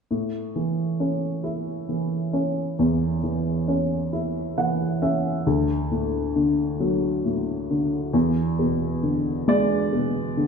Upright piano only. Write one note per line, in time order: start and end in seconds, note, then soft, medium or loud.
0.11 2.74 A2 soft
0.56 1.87 E3 soft
1.00 2.32 C#4 soft
1.44 3.19 E4 soft
1.89 3.22 E3 soft
2.33 3.66 C#4 soft
2.79 5.42 E2 soft
3.23 4.56 E3 soft
3.68 5.00 C#4 soft
4.13 5.42 E4 soft
4.58 5.44 E3 soft
4.58 4.99 F#5 soft
5.02 5.45 C#4 soft
5.02 5.43 E5 soft
5.46 8.10 D2 soft
5.91 7.24 A2 soft
6.36 7.69 D3 soft
6.80 8.10 F#3 soft
7.25 8.11 A2 soft
7.70 8.13 D3 soft
8.13 10.47 E2 soft
8.59 9.91 B2 soft
9.03 10.36 D3 soft
9.48 10.47 G#3 soft
9.92 10.47 B2 soft
10.37 10.47 D3 soft